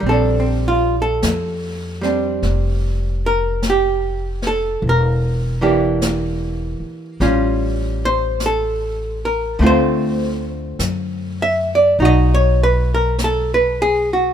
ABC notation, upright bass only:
X:1
M:4/4
L:1/8
Q:"Swing" 1/4=50
K:Bblyd
V:1 name="Upright bass" clef=bass
B,,,2 F,,2 F,,,4 | E,,,3 z A,,,4 | D,,2 ^F,,2 =B,,,4 |]